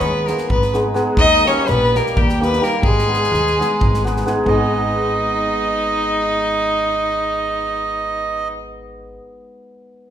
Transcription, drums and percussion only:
0.28 snare soft
0.38 snare soft
0.50 kick medium
0.62 snare soft
0.74 snare soft
0.95 snare soft
1.17 kick loud
1.47 snare soft
1.67 snare soft
1.95 snare soft
2.06 snare soft
2.17 kick loud
2.29 snare soft
2.43 snare soft
2.53 snare soft
2.64 snare soft
2.83 kick loud
2.99 snare soft
3.14 snare soft
3.24 snare soft
3.34 snare soft
3.47 snare soft
3.61 snare soft
3.81 kick loud
3.94 snare soft
4.06 snare soft
4.17 snare soft
4.27 snare soft
4.46 kick medium

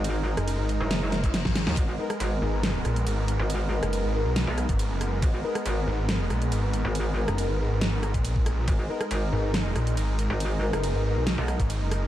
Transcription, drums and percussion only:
0.04 closed hi-hat medium
0.04 ride medium
0.37 cross-stick medium
0.37 closed hi-hat medium
0.48 closed hi-hat medium
0.48 ride soft
0.69 open hi-hat medium
0.91 snare loud
0.91 closed hi-hat medium
0.91 ride medium
1.12 snare medium
1.12 closed hi-hat medium
1.24 kick medium
1.24 closed hi-hat medium
1.34 snare medium
1.34 closed hi-hat medium
1.34 ride medium
1.45 kick medium
1.45 snare medium
1.55 snare medium
1.55 open hi-hat medium
1.67 snare medium
1.77 kick loud
1.77 closed hi-hat medium
1.77 ride medium
2.10 cross-stick medium
2.10 closed hi-hat medium
2.20 closed hi-hat medium
2.20 ride soft
2.63 cross-stick soft
2.63 snare loud
2.63 closed hi-hat medium
2.63 ride medium
2.85 cross-stick medium
2.85 closed hi-hat medium
2.96 closed hi-hat medium
3.07 closed hi-hat medium
3.07 ride soft
3.28 open hi-hat loud
3.50 closed hi-hat medium
3.50 ride medium
3.83 cross-stick medium
3.83 closed hi-hat medium
3.93 closed hi-hat medium
3.93 ride soft
4.36 snare loud
4.36 closed hi-hat medium
4.36 ride medium
4.58 cross-stick medium
4.58 closed hi-hat medium
4.69 kick medium
4.69 closed hi-hat medium
4.79 closed hi-hat medium
4.79 ride soft
5.01 cross-stick medium
5.01 open hi-hat medium
5.22 kick loud
5.22 closed hi-hat medium
5.22 ride medium
5.55 cross-stick medium
5.55 closed hi-hat medium
5.66 closed hi-hat medium
5.66 ride soft
6.09 cross-stick medium
6.09 snare loud
6.09 closed hi-hat medium
6.09 ride medium
6.30 cross-stick medium
6.30 closed hi-hat medium
6.42 closed hi-hat medium
6.52 closed hi-hat medium
6.52 ride soft
6.73 open hi-hat medium
6.95 closed hi-hat medium
6.95 ride medium
7.28 cross-stick medium
7.28 closed hi-hat medium
7.38 closed hi-hat medium
7.38 ride soft
7.81 snare loud
7.81 closed hi-hat medium
7.81 ride medium
8.03 cross-stick medium
8.03 closed hi-hat medium
8.14 kick medium
8.14 closed hi-hat medium
8.25 closed hi-hat medium
8.25 ride soft
8.36 kick medium
8.46 cross-stick medium
8.46 open hi-hat medium
8.68 kick loud
8.68 closed hi-hat medium
8.68 ride medium
9.01 cross-stick medium
9.01 closed hi-hat medium
9.11 closed hi-hat medium
9.11 ride soft
9.54 cross-stick medium
9.54 snare loud
9.54 closed hi-hat medium
9.54 ride medium
9.76 cross-stick medium
9.76 closed hi-hat medium
9.87 closed hi-hat medium
9.97 closed hi-hat medium
9.97 ride soft
10.19 open hi-hat medium
10.40 closed hi-hat medium
10.40 ride medium
10.73 cross-stick medium
10.73 closed hi-hat medium
10.84 closed hi-hat medium
10.84 ride medium
11.27 snare loud
11.27 closed hi-hat medium
11.27 ride medium
11.48 cross-stick medium
11.48 closed hi-hat medium
11.60 kick medium
11.60 closed hi-hat soft
11.70 closed hi-hat medium
11.70 ride soft
11.91 cross-stick medium
11.91 open hi-hat medium

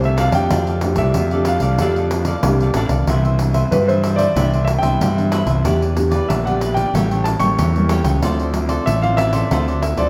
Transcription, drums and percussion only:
0.04 pandeiro soft
0.18 pandeiro medium
0.32 pandeiro medium
0.50 pandeiro medium
0.67 pandeiro soft
0.81 pandeiro medium
0.96 pandeiro medium
1.14 pandeiro medium
1.31 pandeiro soft
1.45 pandeiro medium
1.60 pandeiro medium
1.78 pandeiro medium
1.96 pandeiro soft
2.11 pandeiro medium
2.25 pandeiro medium
2.43 pandeiro medium
2.60 pandeiro soft
2.74 pandeiro medium
2.89 pandeiro medium
3.07 pandeiro medium
3.25 pandeiro soft
3.39 pandeiro medium
3.54 pandeiro medium
3.72 pandeiro medium
3.89 pandeiro soft
4.04 pandeiro medium
4.19 pandeiro medium
4.36 pandeiro medium
4.53 pandeiro soft
4.68 pandeiro medium
4.83 pandeiro medium
5.01 pandeiro medium
5.18 pandeiro soft
5.32 pandeiro medium
5.47 pandeiro medium
5.65 pandeiro medium
5.82 pandeiro soft
5.97 pandeiro medium
6.12 pandeiro medium
6.30 pandeiro medium
6.47 pandeiro soft
6.61 pandeiro medium
6.77 pandeiro medium
6.95 pandeiro medium
7.11 pandeiro soft
7.25 pandeiro medium
7.40 pandeiro medium
7.59 pandeiro medium
7.76 pandeiro soft
7.89 pandeiro medium
8.04 pandeiro medium
8.22 pandeiro medium
8.39 pandeiro soft
8.54 pandeiro medium
8.69 pandeiro medium
8.87 pandeiro medium
9.03 pandeiro soft
9.18 pandeiro medium
9.33 pandeiro medium
9.51 pandeiro medium
9.68 pandeiro soft
9.83 pandeiro medium
9.97 pandeiro medium

